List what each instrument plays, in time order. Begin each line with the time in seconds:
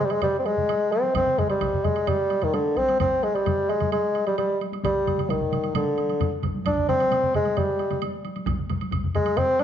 0.00 bassoon G#3, taiko mid
0.06 bassoon G3
0.10 bassoon G#3, taiko high, high woodblock
0.22 bassoon G3, taiko low-mid, taiko mid, taiko high, high woodblock
0.39 bassoon C4
0.46 bassoon G#3, taiko high, high woodblock
0.57 taiko low-mid, taiko mid, taiko high
0.69 taiko high, high woodblock
0.92 bassoon C4, taiko high, high woodblock
1.04 taiko high
1.14 bassoon C4, taiko, taiko low-mid, taiko mid, taiko high, high woodblock
1.27 taiko low-mid, taiko mid
1.38 bassoon G#3, taiko low-mid, taiko mid, taiko high, high woodblock
1.49 bassoon G3, taiko high, high woodblock
1.61 taiko, taiko low-mid, taiko mid, taiko high, high woodblock
1.73 taiko low-mid, taiko mid
1.84 bassoon G#3, taiko low-mid, taiko mid, taiko high, high woodblock
1.96 taiko high, high woodblock
2.07 bassoon G3, taiko low-mid, taiko mid, taiko high, high woodblock
2.30 taiko high, high woodblock
2.42 bassoon D#3, taiko low-mid, taiko mid, taiko high, high woodblock
2.54 bassoon D3, taiko high, high woodblock
2.76 bassoon C4, taiko, taiko high, high woodblock
2.89 taiko high, high woodblock
3.00 bassoon C4, taiko, taiko low-mid, taiko mid, taiko high, high woodblock
3.23 bassoon G#3, taiko high, high woodblock
3.35 bassoon G3, taiko high, high woodblock
3.46 taiko low-mid, taiko mid, taiko high, high woodblock
3.69 bassoon G#3, taiko high, high woodblock
3.80 taiko low-mid, taiko mid, taiko high, high woodblock
3.92 bassoon G#3, taiko high, high woodblock
4.15 taiko high, high woodblock
4.27 bassoon G3, taiko high, high woodblock
4.38 bassoon G3, taiko high, high woodblock
4.61 taiko high, high woodblock
4.72 taiko high, high woodblock
4.83 bassoon G3, taiko, taiko low-mid, taiko mid, taiko high, high woodblock
5.06 taiko low-mid, taiko mid, taiko high, high woodblock
5.18 taiko low-mid, taiko mid, taiko high, high woodblock
5.24 bassoon G3
5.29 bassoon D#3, taiko, taiko low-mid, taiko mid, taiko high, high woodblock
5.41 taiko low-mid, taiko mid
5.52 taiko low-mid, taiko mid, taiko high, high woodblock
5.63 taiko high, high woodblock
5.74 bassoon D3, taiko low-mid, taiko mid, taiko high, high woodblock
5.98 taiko high, high woodblock
6.09 taiko high, high woodblock
6.20 taiko low-mid, taiko mid, taiko high, high woodblock
6.43 taiko, taiko low-mid, taiko mid, taiko high, high woodblock
6.55 taiko high
6.65 bassoon D4, taiko, taiko low-mid, taiko mid, taiko high, high woodblock
6.77 taiko low-mid, taiko mid
6.89 bassoon C4, taiko low-mid, taiko mid, taiko high, high woodblock
7.00 taiko high, high woodblock
7.11 taiko low-mid, taiko mid, taiko high, high woodblock
7.23 taiko low-mid, taiko mid
7.34 bassoon G#3, taiko low-mid, taiko mid, taiko high, high woodblock
7.45 taiko high, high woodblock
7.57 bassoon G3, taiko low-mid, taiko mid, taiko high, high woodblock
7.79 taiko high, high woodblock
7.91 taiko low-mid, taiko mid, taiko high, high woodblock
8.02 taiko high, high woodblock
8.25 taiko high, high woodblock
8.36 taiko high, high woodblock
8.46 taiko, taiko low-mid, taiko mid, taiko high, high woodblock
8.58 taiko low-mid, taiko mid
8.70 taiko low-mid, taiko mid, taiko high, high woodblock
8.81 taiko high, high woodblock
8.92 taiko, taiko low-mid, taiko mid, taiko high, high woodblock
9.04 taiko low-mid, taiko mid
9.14 bassoon G#3, taiko low-mid, taiko mid, taiko high, high woodblock
9.26 taiko high, high woodblock
9.37 bassoon C4, taiko low-mid, taiko mid, taiko high, high woodblock
9.59 bassoon D4, taiko high, high woodblock